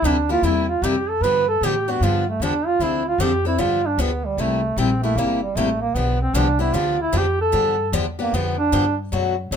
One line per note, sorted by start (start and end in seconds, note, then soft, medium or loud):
0.02 0.41 D2 medium
0.02 0.15 C3 medium
0.02 0.16 G3 medium
0.02 0.16 A#3 medium
0.02 0.16 E4 medium
0.02 0.16 G4 medium
0.07 0.30 D4 medium
0.29 0.43 A#3 soft
0.29 0.43 E4 medium
0.29 0.47 F4 medium
0.29 0.43 G4 soft
0.42 0.81 E2 medium
0.42 0.65 C3 medium
0.42 0.65 G3 medium
0.42 0.65 A#3 medium
0.42 0.65 E4 medium
0.42 0.68 E4 medium
0.42 0.65 G4 medium
0.69 0.86 F4 medium
0.82 1.20 F2 medium
0.82 0.94 C3 medium
0.82 0.95 G3 medium
0.82 0.95 A#3 medium
0.82 0.95 E4 medium
0.82 0.95 G4 medium
0.82 1.11 G4 medium
1.09 1.24 A4 medium
1.21 1.60 G2 medium
1.21 1.44 D3 medium
1.21 1.45 F3 medium
1.21 1.44 B3 medium
1.21 1.45 D4 medium
1.21 1.45 G4 medium
1.21 1.47 B4 loud
1.49 1.67 A4 loud
1.61 2.00 A2 medium
1.61 1.74 D3 medium
1.61 1.74 F3 medium
1.61 1.74 B3 medium
1.61 1.74 D4 medium
1.61 1.74 G4 loud
1.66 1.91 G4 medium
1.88 2.02 B3 soft
1.88 2.01 D4 medium
1.88 2.05 F#4 medium
1.88 2.01 G4 medium
2.01 2.39 G2 medium
2.01 2.23 D3 medium
2.01 2.23 F3 medium
2.01 2.24 B3 medium
2.01 2.24 D4 medium
2.01 2.27 F4 medium
2.01 2.24 G4 medium
2.29 2.44 A3 medium
2.40 2.78 E2 medium
2.40 2.53 D3 medium
2.40 2.53 F3 medium
2.40 2.53 B3 medium
2.40 2.68 D4 medium
2.40 2.53 D4 medium
2.40 2.53 G4 medium
2.66 2.85 F4 medium
2.79 3.18 D2 medium
2.79 3.02 D3 medium
2.79 3.02 F3 medium
2.79 3.02 C4 medium
2.79 3.02 D4 medium
2.79 3.07 E4 medium
2.79 3.03 A4 medium
3.08 3.23 F4 medium
3.18 3.57 F2 medium
3.18 3.31 D3 medium
3.18 3.31 F3 medium
3.18 3.31 C4 medium
3.18 3.31 D4 medium
3.18 3.46 G4 medium
3.18 3.32 A4 loud
3.45 3.58 C4 soft
3.45 3.58 D4 soft
3.45 3.61 E4 medium
3.45 3.59 A4 medium
3.58 3.97 G2 medium
3.58 3.80 D3 medium
3.58 3.80 F3 medium
3.58 3.80 B3 medium
3.58 3.80 D4 medium
3.58 3.88 F4 medium
3.58 3.81 G4 medium
3.86 4.02 D4 medium
3.97 4.36 D2 medium
3.97 4.10 D3 medium
3.97 4.10 F3 medium
3.97 4.10 B3 medium
3.97 4.27 B3 medium
3.97 4.10 D4 medium
3.97 4.11 G4 loud
4.26 4.41 G3 medium
4.37 4.76 C2 medium
4.37 4.60 C3 medium
4.37 4.60 G3 medium
4.37 4.78 A3 medium
4.37 4.60 A#3 medium
4.37 4.60 E4 medium
4.37 4.60 G4 medium
4.76 5.15 A#1 medium
4.76 4.89 C3 medium
4.76 4.89 G3 medium
4.76 4.89 A#3 medium
4.76 5.02 C4 medium
4.76 4.89 E4 medium
4.76 4.89 G4 medium
5.03 5.18 A3 medium
5.03 5.17 A#3 soft
5.03 5.17 E4 medium
5.03 5.17 G4 medium
5.16 5.55 G1 medium
5.16 5.39 C3 medium
5.16 5.39 G3 medium
5.16 5.42 A#3 medium
5.16 5.39 A#3 medium
5.16 5.39 E4 medium
5.16 5.40 G4 medium
5.42 5.57 G3 medium
5.55 5.94 A1 medium
5.55 5.68 C3 medium
5.55 5.68 G3 medium
5.55 5.80 A3 medium
5.55 5.68 A#3 medium
5.55 5.68 E4 medium
5.55 5.69 G4 medium
5.81 5.97 A#3 medium
5.95 6.33 B1 medium
5.95 6.17 D3 medium
5.95 6.17 F3 medium
5.95 6.21 B3 medium
5.95 6.18 B3 medium
5.95 6.18 D4 medium
5.95 6.18 G4 medium
6.22 6.38 C4 medium
6.33 6.72 C2 medium
6.33 6.46 D3 medium
6.33 6.47 F3 medium
6.33 6.47 B3 loud
6.33 6.47 D4 medium
6.33 6.60 D4 medium
6.33 6.47 G4 loud
6.59 6.73 B3 soft
6.59 6.73 D4 medium
6.59 6.77 E4 medium
6.59 6.73 G4 medium
6.73 7.12 D2 medium
6.73 6.96 D3 medium
6.73 6.96 F3 medium
6.73 6.96 B3 medium
6.73 6.96 D4 medium
6.73 7.00 F4 medium
6.73 6.96 G4 medium
7.01 7.19 E4 medium
7.12 7.52 F2 medium
7.12 7.25 D3 medium
7.12 7.25 F3 medium
7.12 7.25 B3 medium
7.12 7.25 D4 medium
7.12 7.26 G4 medium
7.17 7.41 G4 medium
7.41 7.91 A4 loud
7.52 7.92 G2 medium
7.52 7.75 D3 medium
7.52 7.75 F3 medium
7.52 7.75 B3 medium
7.52 7.75 D4 medium
7.52 7.75 G4 medium
7.92 8.31 E2 medium
7.92 8.05 D3 medium
7.92 8.05 F3 medium
7.92 8.05 B3 loud
7.92 8.05 D4 medium
7.92 8.05 G4 medium
8.19 8.36 A#3 medium
8.19 8.33 B3 soft
8.19 8.33 D4 medium
8.19 8.33 G4 medium
8.33 8.71 F2 medium
8.33 8.55 D3 medium
8.33 8.56 F3 medium
8.33 8.55 B3 medium
8.33 8.58 B3 medium
8.33 8.56 D4 medium
8.33 8.56 G4 medium
8.59 8.95 D4 medium
8.72 9.11 G2 medium
8.72 8.84 D3 medium
8.72 8.84 F3 medium
8.72 8.84 B3 medium
8.72 8.84 D4 medium
8.72 8.85 G4 medium
9.12 9.50 F#2 medium
9.12 9.34 B2 medium
9.12 9.34 F#3 medium
9.12 9.34 A3 medium
9.12 9.34 D4 medium
9.12 9.34 F#4 medium
9.51 9.56 D2 medium
9.51 9.56 B2 medium
9.51 9.56 F#3 medium
9.51 9.56 A3 medium
9.51 9.56 D4 medium
9.51 9.56 F#4 medium